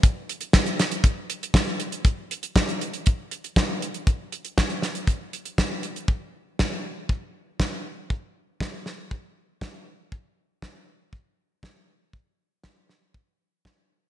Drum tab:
HH |x-xxxxxxx-xxx-xx|x-xxxxxxx-xxx-xx|x-xxxxxxx-xxx-xx|----------------|
SD |----o-o-----o---|----o-------o---|----o-o-----o---|----o-------o---|
BD |o---o---o---o---|o---o---o---o---|o---o---o---o---|o---o---o---o---|

HH |----------------|----------------|----------------|
SD |----o-o-----o---|----o-------o---|----o-o-----o---|
BD |o---o---o---o---|o---o---o---o---|o---o---o---o---|